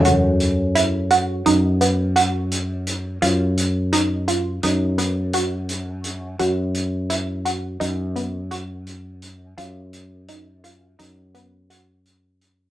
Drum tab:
HH |xxxxxxxxx|xxxxxxxxx|xxxxxxxxx|xxxxxxxxx|